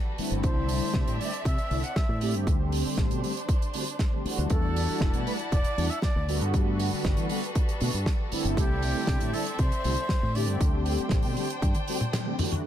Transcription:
Already playing: violin section G3 F#4 A4 B4
0.18 analog polysynth D3 G3 A3 C4 E4, muted fingered electric bass stroke, open hi-hat
0.30 fingered electric bass G1, closed hi-hat
0.43 fingered electric bass C2, violin section C4 D5 E5, flute C5, kick, closed hi-hat
0.69 open hi-hat
0.94 fingered electric bass C3, kick, snare, closed hi-hat
1.07 fingered electric bass A2, closed hi-hat
1.20 analog polysynth D3 G3 A3 C4 E4, flute D5, open hi-hat
1.33 closed hi-hat
1.45 fingered electric bass C3, flute E5, kick, closed hi-hat
1.58 closed hi-hat
1.71 fingered electric bass C2, analog polysynth D3 G3 A3 C4 E4, open hi-hat
1.83 flute F#5, closed hi-hat
1.96 flute E5, kick, snare, closed hi-hat
2.09 fingered electric bass A2
2.21 analog polysynth D3 G3 A3 C4 G4, open hi-hat
2.34 fingered electric bass G2, closed hi-hat
2.47 fingered electric bass D2, violin section D4 C5, kick, closed hi-hat
2.72 open hi-hat
2.86 muted fingered electric bass stroke
2.97 fingered electric bass A1, kick, snare, closed hi-hat
3.11 fingered electric bass B2, closed hi-hat
3.23 analog polysynth D3 G3 A3 C4 G4, open hi-hat
3.37 closed hi-hat
3.49 kick, closed hi-hat
3.62 closed hi-hat
3.74 analog polysynth D3 G3 A3 C4 F#4, open hi-hat
3.88 closed hi-hat
3.99 kick, snare, closed hi-hat
4.12 analog polysynth D3 G3 A3 C4 G4
4.24 analog polysynth E3 G3 A3 D4 F#4, muted fingered electric bass stroke, open hi-hat
4.38 fingered electric bass D2, closed hi-hat
4.50 fingered electric bass E2, violin section E4 D5 F#5 A5, flute A4, kick, closed hi-hat
4.76 open hi-hat
4.89 muted fingered electric bass stroke
5.00 fingered electric bass E1, kick, snare
5.14 fingered electric bass B2, closed hi-hat
5.26 analog polysynth E3 G3 A3 D4 F#4, flute B4, open hi-hat
5.39 closed hi-hat
5.52 fingered electric bass E1, flute D5, kick, closed hi-hat
5.64 closed hi-hat
5.77 fingered electric bass E2, analog polysynth E3 G3 A3 D4 F#4, open hi-hat
5.90 flute E5, closed hi-hat
6.02 flute D5, kick, snare, closed hi-hat
6.16 fingered electric bass D2
6.27 analog polysynth D3 G3 A3 B3 F#4, violin section G3 F#4 A4 B4, open hi-hat
6.41 fingered electric bass G2, closed hi-hat
6.54 fingered electric bass G2, kick, closed hi-hat
6.80 open hi-hat
6.93 muted fingered electric bass stroke
7.05 fingered electric bass G1, kick, snare, closed hi-hat
7.17 fingered electric bass E3, closed hi-hat
7.29 analog polysynth D3 G3 A3 B3 F#4, open hi-hat
7.44 closed hi-hat
7.55 kick, closed hi-hat
7.69 closed hi-hat
7.80 fingered electric bass B2, analog polysynth D3 G3 A3 B3 F#4, open hi-hat
7.94 fingered electric bass G2, closed hi-hat
8.06 kick, snare, closed hi-hat
8.31 analog polysynth D3 G3 A3 C4 E4, muted fingered electric bass stroke, open hi-hat
8.45 fingered electric bass G1, closed hi-hat
8.57 fingered electric bass C2, violin section C4 D5 E5, flute G4, kick, closed hi-hat
8.82 open hi-hat
9.07 fingered electric bass C3, kick, snare, closed hi-hat
9.20 fingered electric bass A2, closed hi-hat
9.33 analog polysynth D3 G3 A3 C4 E4, flute A4, open hi-hat
9.46 closed hi-hat
9.59 fingered electric bass C3, flute C5, kick, closed hi-hat
9.72 closed hi-hat
9.84 fingered electric bass C2, analog polysynth D3 G3 A3 C4 E4, open hi-hat
9.97 closed hi-hat
10.09 kick, snare, closed hi-hat
10.23 fingered electric bass A2
10.35 analog polysynth D3 G3 A3 C4 G4, flute D5, open hi-hat
10.48 fingered electric bass G2, closed hi-hat
10.61 fingered electric bass D2, violin section D4 C5 G5, kick, closed hi-hat
10.86 open hi-hat
10.98 closed hi-hat
11.09 fingered electric bass A1, kick, snare, closed hi-hat
11.22 fingered electric bass B2, open hi-hat
11.37 analog polysynth D3 G3 A3 C4 G4, open hi-hat
11.50 closed hi-hat
11.62 fingered electric bass G2, kick, closed hi-hat, high tom
11.75 closed hi-hat, high tom
11.88 analog polysynth D3 G3 A3 C4 F#4, open hi-hat
12.00 closed hi-hat, mid tom
12.13 snare, closed hi-hat, mid tom
12.26 analog polysynth D3 G3 A3 C4 G4
12.39 analog polysynth E3 G3 A3 D4 F#4, mid tom, open hi-hat
12.51 closed hi-hat, mid tom
12.63 analog polysynth E3 G3

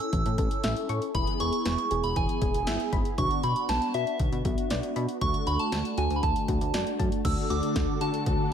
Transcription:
Already playing: analog polysynth C#4 E4 A4, synth bell E6
0.00 closed hi-hat
0.13 analog synth bass A1, synth arpeggio sound E3, kick, closed hi-hat
0.26 analog synth bass A2, closed hi-hat
0.38 analog synth bass A1, synth arpeggio sound A4, kick, closed hi-hat
0.51 closed hi-hat
0.64 analog synth bass A1, synth arpeggio sound E5, snare, closed hi-hat
0.77 closed hi-hat
0.89 analog synth bass A2, synth arpeggio sound C#6, closed hi-hat
1.02 closed hi-hat
1.15 analog synth bass E1, synth arpeggio sound E3, analog polysynth B3 E4 G#4, synth bell B5, kick, closed hi-hat
1.27 closed hi-hat
1.40 analog synth bass E1, synth arpeggio sound G#4, synth bell C#6, closed hi-hat
1.53 closed hi-hat
1.65 analog synth bass E1, synth arpeggio sound B3, snare, closed hi-hat
1.78 closed hi-hat
1.91 analog synth bass E1, synth arpeggio sound G#4, closed hi-hat
2.04 analog synth bass E1, synth bell B5, closed hi-hat
2.16 analog synth bass E1, synth arpeggio sound E3, synth bell G#5, kick, closed hi-hat
2.29 closed hi-hat
2.42 analog synth bass E1, synth arpeggio sound G#4, kick, closed hi-hat
2.54 analog synth bass E1, closed hi-hat
2.67 analog synth bass G#1, synth arpeggio sound E5, snare, closed hi-hat
2.80 closed hi-hat
2.93 analog synth bass G#1, synth arpeggio sound B5, kick, closed hi-hat
3.05 closed hi-hat
3.18 analog synth bass B1, synth arpeggio sound D3, analog polysynth B3 D4 F#4, synth bell C#6, kick, closed hi-hat
3.31 closed hi-hat
3.43 analog synth bass B2, synth arpeggio sound F#4, synth bell B5, closed hi-hat
3.56 closed hi-hat
3.69 analog synth bass B1, synth arpeggio sound B3, synth bell A5, snare, closed hi-hat
3.82 closed hi-hat
3.94 analog synth bass B2, synth arpeggio sound F#4, synth bell E5, closed hi-hat
4.07 closed hi-hat
4.19 analog synth bass B1, synth arpeggio sound D3, kick, closed hi-hat
4.32 analog synth bass B2, closed hi-hat
4.45 analog synth bass B1, synth arpeggio sound F#4, kick, closed hi-hat
4.58 closed hi-hat
4.70 analog synth bass B1, synth arpeggio sound D5, snare, closed hi-hat
4.83 closed hi-hat
4.96 analog synth bass B2, synth arpeggio sound B5, closed hi-hat
5.09 closed hi-hat
5.21 analog synth bass D2, synth arpeggio sound D3, analog polysynth A3 D4 F#4, synth bell C#6, kick, closed hi-hat
5.34 closed hi-hat
5.47 analog synth bass D2, synth arpeggio sound F#4, synth bell B5, closed hi-hat
5.59 synth bell A5, closed hi-hat
5.72 analog synth bass D2, synth arpeggio sound A3, snare, closed hi-hat
5.85 closed hi-hat
5.98 analog synth bass D2, synth arpeggio sound F#4, synth bell G#5, closed hi-hat
6.10 analog synth bass D2, closed hi-hat
6.16 synth bell B5
6.23 analog synth bass D2, synth arpeggio sound D3, synth bell A5, kick, closed hi-hat
6.36 closed hi-hat
6.48 analog synth bass D2, synth arpeggio sound F#4, kick, closed hi-hat
6.61 analog synth bass D2, closed hi-hat
6.74 analog synth bass F#2, synth arpeggio sound D5, snare, closed hi-hat
6.87 closed hi-hat
6.99 analog synth bass F#2, synth arpeggio sound A5, kick, closed hi-hat
7.12 closed hi-hat
7.25 analog synth bass D2, string machine D3 D4 F#4 A4, synth arpeggio sound D3, analog polysynth A3 D4 F#4, synth bell E6, kick, closed hi-hat, crash
7.50 analog synth bass D2, synth arpeggio sound F#4, synth bell D6, closed hi-hat
7.63 closed hi-hat
7.76 analog synth bass D2, synth arpeggio sound A3, kick, snare, closed hi-hat
8.01 analog synth bass D3, synth arpeggio sound F#4, synth bell A5, closed hi-hat
8.14 closed hi-hat
8.26 analog synth bass D2, synth arpeggio sound D3, kick, closed hi-hat

